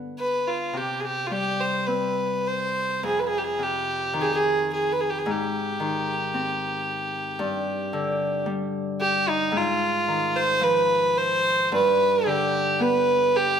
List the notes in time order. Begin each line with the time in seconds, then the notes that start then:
Already playing: D3 B3
0.19 B4
0.47 F4
0.73 C3 G4
1.00 G#4
1.05 G4
1.27 G3 F4
1.31 G4
1.60 C5
1.87 C4 B4
2.47 C5
3.03 F2 G#4
3.19 B4
3.27 G#4
3.38 G4
3.44 G#4
3.59 C3 G4
4.13 D#3
4.21 G4 G#4
4.32 G#4
4.73 G#4
4.92 B4
5.00 G#4
5.10 G4
5.18 G#4
5.26 G#2
5.30 G4
5.80 D#3
6.34 C4
7.39 G2
7.93 D3
8.46 G3
9.01 G4
9.29 D#4
9.52 G#2
9.57 F4
10.08 D#3
10.36 C5
10.61 F3 B4
11.17 C5
11.72 G2 B4
12.26 D3 G4
12.80 B3 B4
13.36 G4